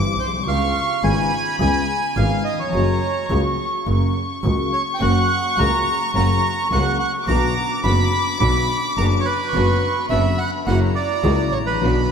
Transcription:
Already playing: double bass G1, grand piano G1 G2 E3 G3 C4 G4, violin section D6
0.19 double bass B1, bandoneon C5
0.26 grand piano A#1
0.33 grand piano B1
0.40 grand piano C2
0.46 double bass C#2, grand piano C#2 C#3 G#3 B3 F4, bandoneon F5, violin section C#6
1.03 double bass G#1, grand piano G#1 G#2 C#3 G#3 B3 F4, bandoneon G#5, violin section B5
1.60 double bass C#2, grand piano C#2 C#3 G#3 B3 F4, bandoneon G#5
2.16 double bass G#1, grand piano G#1 G#2 C#3 G#3 B3 F4, bandoneon F5, violin section G#5
2.45 bandoneon D#5
2.53 grand piano D#2
2.59 grand piano E2, bandoneon C#5
2.67 grand piano F2
2.73 double bass F#1, grand piano F#2 C#3 F#3 A#3 F#4, violin section A#5
3.30 double bass C#2, grand piano C#2 C#3 F#3 A#3 F#4, violin section C#6
3.86 double bass F#1, grand piano F#2 C#3 F#3 A#3 F#4, violin section C#6
4.44 double bass C#2, grand piano C#2 C#3 F#3 A#3 F#4
4.73 bandoneon C#5
4.94 bandoneon G5
5.01 double bass F#1, grand piano F#2 C#3 F#3 A#3 F#4, string section A#3 C#4 F#4, bandoneon F#5
5.58 double bass C#2, grand piano C#2 C#3 F#3 A#3 F#4, string section A#3 C#4 F#4, bandoneon A#5
6.15 double bass F#1, grand piano F#2 C#3 F#3 A#3 F#4, string section A#3 C#4 F#4, bandoneon A#5
6.71 double bass C#2, grand piano C#2 C#3 F#3 A#3 F#4, string section A#3 C#4 F#4, bandoneon F#5
6.99 bandoneon F#5
7.28 double bass B1, grand piano B1 B2 D3 F#3 B3 F#4, string section B3 D4 F#4, bandoneon A#5, violin section D6
7.83 grand piano F#1 F#2 D3 F#3 B3 F#4, double bass F#1, string section B3 D4 F#4, bandoneon B5
8.40 double bass B1, grand piano B1 B2 D3 F#3 B3 F#4, string section B3 D4 F#4, bandoneon B5
8.97 double bass F#1, grand piano F#1 F#2 D3 F#3 B3 F#4, string section B3 D4 F#4, bandoneon A#5
9.20 bandoneon C#5
9.25 bandoneon B4
9.53 double bass F#1, grand piano F#2 D3 F#3 B3 F#4, string section B3 D4 F#4, violin section C#6
10.10 double bass F#1, grand piano F#2 D3 F#3 B3 F#4, string section B3 D4 F#4, bandoneon E5, violin section B5
10.38 bandoneon F#5
10.67 double bass F#1, grand piano F#2 C#3 F#3 A#3 E4, string section A#3 E4 F#4, bandoneon F#5, violin section A#5
10.95 bandoneon D5
11.23 grand piano C#2 C#3 F#3 A#3 E4, double bass C#2, string section A#3 E4 F#4
11.52 double bass A1, bandoneon C#5
11.60 grand piano G#1
11.66 grand piano A1, bandoneon B4
11.75 grand piano A#1
11.80 double bass B1, grand piano B1 B2 D3 F#3 B3 F#4, string section B3 D4 F#4, violin section B5

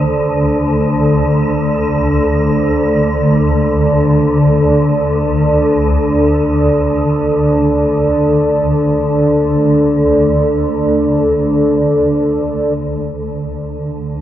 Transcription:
Already playing: synth drone D2 D3, singing bowl A3 C5, analog synth pad D4 A4 D5
12.78 synth drone D2 D3

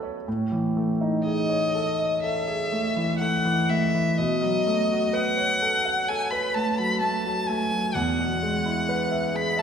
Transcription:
Already playing: grand piano B2 F#3 A3 E4 F#4 A4 C#5
0.03 grand piano C#5
0.28 grand piano A2
0.52 grand piano E3
0.77 grand piano A3
1.01 grand piano D#4
1.25 grand piano G#4, violin D#5
1.49 grand piano C#5
1.75 grand piano A4
1.99 grand piano D#5
2.23 grand piano A4, violin E5
2.47 grand piano G#4
2.72 grand piano A3
2.96 grand piano E3
3.19 grand piano A3, violin F#5
3.45 grand piano E3
3.70 grand piano A3, violin E5
3.95 grand piano E3
4.18 grand piano B2, violin D#5
4.43 grand piano F#3
4.67 grand piano A3
4.91 grand piano F#4
5.13 grand piano B4, violin F#5
5.37 grand piano C#5
5.62 grand piano A4
5.85 grand piano F#5
6.08 grand piano A4, violin G#5
6.31 grand piano B4, violin B5
6.54 grand piano A3, violin A5
6.78 grand piano F#3, violin B5
7.01 grand piano A3, violin A5
7.26 grand piano F#3
7.47 grand piano A3, violin G#5
7.73 grand piano F#3
7.95 grand piano E2, violin F#5
8.19 grand piano B2
8.43 grand piano G#3
8.66 grand piano E4
8.89 grand piano B4
9.11 grand piano E5
9.34 grand piano G#4, violin B5
9.57 grand piano E5, violin A5

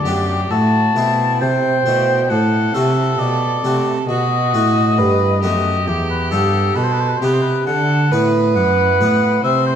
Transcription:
Already playing: oboe D5
0.04 cello F#2, harpsichord F#2 B3 D4 G4, violin G4
0.51 harpsichord A2, cello A2, violin F#4, oboe A5
0.96 cello B2, harpsichord B2 A3 C4 E4, violin E4
1.41 cello C3, harpsichord C3, violin C5, oboe G5
1.86 harpsichord B2 A3 C4 E4, cello B2
2.30 cello A2, harpsichord A2, violin A4, oboe F#5
2.74 harpsichord C3 A3 C4 F#4, cello C3, oboe E5
3.19 harpsichord B2, cello B2, oboe D5
3.64 harpsichord C3 A3 C4 F#4, cello C3
4.08 harpsichord B2, cello B2, violin F#4, oboe D#5
4.54 cello A2, harpsichord A2 A3 B3 F#4
4.98 cello G2, harpsichord G2, violin B4
5.43 harpsichord F#2 A3 B3 F#4, cello F#2, violin G4, oboe D#5
5.87 cello E2, harpsichord E2, oboe G4
6.10 oboe B4
6.31 harpsichord G2 B3 G4, cello G2, oboe A4
6.76 harpsichord B2, cello B2, violin A4, oboe B4
6.83 oboe C5
6.92 oboe B4
7.00 oboe C5
7.08 oboe B4
7.16 oboe C5
7.22 harpsichord C3 B3 G4, cello C3, violin G4, oboe B4
7.33 oboe C5
7.41 oboe B4
7.67 harpsichord D3, cello D3, violin A4, oboe F#5
8.12 harpsichord A2 B3 B4, cello A2, violin B4
8.56 harpsichord F#2, cello F#2, oboe F#5
9.00 cello A2, harpsichord A2 B3 B4
9.44 cello C3, harpsichord C3, violin C5, oboe E5
9.66 oboe C5

